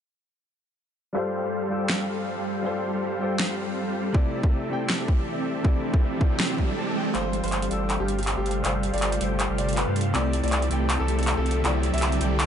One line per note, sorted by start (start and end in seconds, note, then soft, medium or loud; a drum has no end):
1.13 1.67 G3 medium
1.13 1.41 G3 medium
1.13 4.12 G3 medium
1.13 7.11 C4 medium
1.13 1.69 F4 medium
1.13 4.12 F4 medium
1.13 1.41 G4 medium
1.13 1.41 A4 medium
1.13 7.11 A4 medium
1.13 1.69 A4 medium
1.13 1.41 C5 medium
1.13 1.70 C5 loud
1.13 1.41 F5 medium
1.43 1.69 G3 medium
1.43 1.69 G4 medium
1.43 1.69 A4 medium
1.43 1.69 C5 medium
1.43 1.69 F5 medium
1.69 2.61 G3 medium
1.69 1.97 G3 medium
1.69 2.62 F4 medium
1.69 1.97 G4 medium
1.69 1.97 A4 medium
1.69 2.63 A4 medium
1.69 1.97 C5 medium
1.69 1.97 G5 medium
1.73 2.64 E6 medium
1.90 finger snap loud
1.90 snare loud
2.00 2.35 G3 medium
2.00 2.35 G4 medium
2.00 2.35 A4 medium
2.00 2.35 C5 medium
2.00 2.35 F5 medium
2.37 2.63 G3 medium
2.37 2.62 G4 medium
2.37 2.63 A4 medium
2.37 2.63 C5 medium
2.37 2.63 F5 medium
2.62 3.17 G3 medium
2.62 2.91 G3 medium
2.62 3.18 F4 medium
2.62 2.91 G4 medium
2.62 2.91 A4 medium
2.62 3.19 A4 medium
2.62 2.91 C5 medium
2.62 3.20 C5 medium
2.62 2.91 F5 medium
2.93 3.19 G3 medium
2.93 3.19 G4 medium
2.93 3.19 A4 medium
2.93 3.19 C5 medium
2.93 3.19 F5 medium
3.19 4.11 G3 medium
3.19 3.47 G3 medium
3.19 4.12 F4 medium
3.19 3.47 G4 medium
3.19 3.47 A4 medium
3.19 4.13 A4 medium
3.19 3.47 C5 medium
3.19 3.47 G5 medium
3.23 4.14 C5 medium
3.40 finger snap loud
3.40 snare loud
3.50 3.85 G3 medium
3.50 3.85 G4 medium
3.50 3.85 A4 medium
3.50 3.85 C5 medium
3.50 3.85 F5 medium
3.87 4.12 G3 medium
3.87 4.12 G4 medium
3.87 4.12 A4 medium
3.87 4.12 C5 medium
3.87 4.12 F5 medium
4.12 4.67 C3 medium
4.12 7.12 E3 medium
4.12 4.68 A3 medium
4.12 4.41 C4 medium
4.12 7.12 D4 medium
4.12 4.69 E4 medium
4.12 4.41 G4 medium
4.12 4.41 A4 medium
4.12 4.41 D5 medium
4.12 4.70 D5 loud
4.12 4.41 E5 medium
4.12 kick loud
4.12 riser medium
4.43 4.69 C4 medium
4.43 4.69 G4 medium
4.43 4.69 A4 medium
4.43 4.69 D5 medium
4.43 4.69 E5 medium
4.43 kick loud
4.69 5.61 C3 medium
4.69 5.62 A3 medium
4.69 4.97 C4 medium
4.69 5.63 E4 medium
4.69 4.97 G4 medium
4.69 4.97 A4 medium
4.69 4.97 D5 medium
4.69 4.97 G5 medium
4.69 5.64 G5 medium
4.90 finger snap loud
4.90 snare loud
5.00 5.35 C4 medium
5.00 5.35 G4 medium
5.00 5.35 A4 medium
5.00 5.35 D5 medium
5.00 5.35 E5 medium
5.08 kick loud
5.37 5.63 C4 medium
5.37 5.63 G4 medium
5.37 5.63 A4 medium
5.37 5.63 D5 medium
5.37 5.63 E5 medium
5.63 6.18 C3 medium
5.63 6.19 A3 medium
5.63 5.91 C4 medium
5.63 6.19 E4 medium
5.63 5.91 G4 medium
5.63 5.91 A4 medium
5.63 5.91 D5 medium
5.63 5.91 E5 medium
5.63 kick loud
5.67 6.20 D5 medium
5.94 6.19 C4 medium
5.94 6.19 G4 medium
5.94 6.19 A4 medium
5.94 6.19 D5 medium
5.94 6.19 E5 medium
5.94 kick loud
6.19 7.12 C3 medium
6.19 7.12 A3 medium
6.19 6.47 C4 medium
6.19 7.13 E4 medium
6.19 6.47 G4 medium
6.19 6.47 A4 medium
6.19 6.47 D5 medium
6.19 6.47 G5 medium
6.19 kick loud
6.23 7.14 D5 medium
6.40 finger snap loud
6.40 snare loud
6.50 6.75 C4 medium
6.50 6.75 G4 medium
6.50 6.75 A4 medium
6.50 6.75 D5 medium
6.50 6.75 E5 medium
6.58 kick medium
6.77 6.94 C4 medium
6.77 6.94 G4 medium
6.77 6.94 A4 medium
6.77 6.94 D5 medium
6.77 6.94 A5 loud
6.96 7.05 C4 medium
6.96 7.05 G4 medium
6.96 7.05 A4 medium
6.96 7.05 D5 medium
6.96 7.05 G5 medium
7.06 7.13 C4 loud
7.06 7.13 G4 medium
7.06 7.13 A4 medium
7.06 7.13 D5 medium
7.06 7.13 G5 loud
7.13 7.42 G1 medium
7.13 10.12 C3 medium
7.13 7.67 G3 medium
7.13 7.41 G3 medium
7.13 12.46 A3 medium
7.13 7.69 F4 medium
7.13 10.12 F4 medium
7.13 7.41 G4 medium
7.13 7.41 A4 medium
7.13 7.69 A4 medium
7.13 7.36 C5 medium
7.13 7.41 C5 medium
7.13 7.70 C5 loud
7.13 7.41 F5 medium
7.13 clap soft
7.13 closed hi-hat medium
7.13 riser medium
7.33 closed hi-hat medium
7.43 7.69 G1 medium
7.43 7.69 G3 medium
7.43 7.69 G4 medium
7.43 7.69 A4 medium
7.43 7.64 C5 medium
7.43 7.69 C5 medium
7.43 7.69 F5 medium
7.43 closed hi-hat soft
7.48 closed hi-hat medium
7.52 clap soft
7.52 closed hi-hat medium
7.62 closed hi-hat medium
7.69 7.98 G1 medium
7.69 8.61 G3 medium
7.69 7.97 G3 medium
7.69 8.62 F4 medium
7.69 7.97 G4 medium
7.69 7.97 A4 medium
7.69 8.63 A4 medium
7.69 7.97 C5 medium
7.69 7.97 G5 medium
7.69 closed hi-hat medium
7.73 8.64 E6 medium
7.90 clap medium
7.90 closed hi-hat medium
8.00 8.35 G1 loud
8.00 8.35 G3 medium
8.00 8.35 G4 medium
8.00 8.13 G4 medium
8.00 8.35 A4 medium
8.00 8.35 C5 medium
8.00 8.35 F5 medium
8.08 closed hi-hat medium
8.19 8.32 G4 medium
8.19 closed hi-hat soft
8.23 closed hi-hat medium
8.27 clap soft
8.27 closed hi-hat medium
8.37 8.63 G1 medium
8.37 8.63 G3 medium
8.37 8.63 G4 medium
8.37 8.58 G4 medium
8.37 8.63 A4 medium
8.37 8.63 C5 medium
8.37 8.63 F5 medium
8.46 closed hi-hat soft
8.51 closed hi-hat medium
8.63 8.91 G1 loud
8.63 9.17 G3 medium
8.63 8.91 G3 medium
8.63 9.19 F4 medium
8.63 8.91 G4 medium
8.63 8.91 A4 medium
8.63 9.19 A4 medium
8.63 8.91 C5 medium
8.63 8.91 F5 medium
8.63 clap soft
8.63 closed hi-hat medium
8.67 9.20 C5 medium
8.83 closed hi-hat medium
8.93 9.19 G1 loud
8.93 9.19 G3 medium
8.93 9.19 G4 medium
8.93 9.19 A4 medium
8.93 9.19 C5 medium
8.93 9.21 D5 medium
8.93 9.19 F5 medium
8.93 closed hi-hat soft
8.98 closed hi-hat medium
9.02 clap medium
9.02 closed hi-hat medium
9.12 closed hi-hat medium
9.19 9.48 G1 medium
9.19 10.12 G3 medium
9.19 9.47 G3 medium
9.19 10.12 F4 medium
9.19 9.47 G4 medium
9.19 9.47 A4 medium
9.19 10.13 A4 medium
9.19 9.47 C5 medium
9.19 9.47 G5 medium
9.19 closed hi-hat medium
9.23 10.14 C5 medium
9.40 clap medium
9.40 closed hi-hat medium
9.50 9.85 G1 loud
9.50 9.85 G3 medium
9.50 9.85 G4 medium
9.50 9.85 A4 medium
9.50 9.85 C5 medium
9.50 9.85 F5 medium
9.58 9.73 D5 medium
9.58 closed hi-hat medium
9.69 closed hi-hat soft
9.73 closed hi-hat medium
9.77 9.91 B4 medium
9.77 clap medium
9.77 closed hi-hat medium
9.87 10.13 G2 medium
9.87 10.13 G3 medium
9.87 10.12 G4 medium
9.87 10.12 A4 medium
9.87 10.12 C5 medium
9.87 10.12 F5 medium
9.96 closed hi-hat soft
10.01 closed hi-hat medium
10.13 10.42 C2 loud
10.13 10.67 C3 loud
10.13 12.46 D3 medium
10.13 10.68 A3 medium
10.13 10.41 C4 medium
10.13 12.46 E4 medium
10.13 10.69 E4 medium
10.13 10.41 G4 medium
10.13 10.41 A4 medium
10.13 10.41 D5 medium
10.13 10.36 D5 loud
10.13 10.70 D5 loud
10.13 10.41 E5 medium
10.13 clap medium
10.13 closed hi-hat medium
10.33 closed hi-hat medium
10.43 10.69 C2 loud
10.43 10.69 C4 medium
10.43 10.69 G4 medium
10.43 10.69 A4 medium
10.43 10.69 D5 medium
10.43 10.64 D5 loud
10.43 10.69 E5 medium
10.43 closed hi-hat soft
10.48 closed hi-hat medium
10.52 clap medium
10.52 closed hi-hat medium
10.62 closed hi-hat medium
10.69 10.98 C2 medium
10.69 11.61 C3 medium
10.69 11.62 A3 medium
10.69 10.97 C4 medium
10.69 11.63 E4 medium
10.69 10.97 G4 medium
10.69 10.97 A4 medium
10.69 10.97 D5 medium
10.69 10.97 G5 medium
10.69 11.64 G5 medium
10.69 closed hi-hat medium
10.90 clap medium
10.90 closed hi-hat medium
11.00 11.35 C2 loud
11.00 11.35 C4 medium
11.00 11.35 G4 medium
11.00 11.13 A4 medium
11.00 11.35 A4 medium
11.00 11.35 D5 medium
11.00 11.35 E5 medium
11.08 closed hi-hat medium
11.19 11.32 A4 medium
11.19 closed hi-hat soft
11.23 closed hi-hat medium
11.27 clap medium
11.27 closed hi-hat medium
11.37 11.63 C2 medium
11.37 11.63 C4 medium
11.37 11.63 G4 medium
11.37 11.62 A4 medium
11.37 11.58 A4 medium
11.37 11.62 D5 medium
11.37 11.63 E5 medium
11.46 closed hi-hat soft
11.51 closed hi-hat medium
11.63 11.92 C2 loud
11.63 12.17 C3 medium
11.63 12.19 A3 medium
11.63 11.91 C4 medium
11.63 12.19 E4 medium
11.63 11.91 G4 medium
11.63 11.91 A4 medium
11.63 11.91 D5 medium
11.63 12.20 D5 medium
11.63 11.91 E5 medium
11.63 clap medium
11.63 closed hi-hat medium
11.83 closed hi-hat medium
11.93 12.19 C2 loud
11.93 12.19 C4 medium
11.93 12.19 G4 medium
11.93 12.19 A4 medium
11.93 12.19 D5 medium
11.93 12.19 E5 medium
11.93 12.21 E5 medium
11.93 closed hi-hat soft
11.98 closed hi-hat medium
12.02 clap medium
12.02 closed hi-hat medium
12.12 closed hi-hat medium
12.19 12.46 C2 medium
12.19 12.46 C3 medium
12.19 12.46 A3 medium
12.19 12.46 C4 medium
12.19 12.46 E4 medium
12.19 12.46 G4 medium
12.19 12.46 A4 medium
12.19 12.46 D5 medium
12.19 12.46 G5 medium
12.19 closed hi-hat medium
12.23 12.46 D5 medium
12.40 clap medium
12.40 closed hi-hat medium